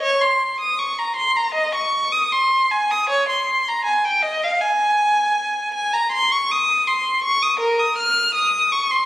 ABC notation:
X:1
M:4/4
L:1/16
Q:1/4=80
K:Ab
V:1 name="Violin"
d c'2 e' d' b c' b e d'2 e' c'2 a e' | d c'2 b a g e f a6 a b | [K:Ebmix] c' d' e'2 c'2 d' e' B e' f'2 e'2 d' c' |]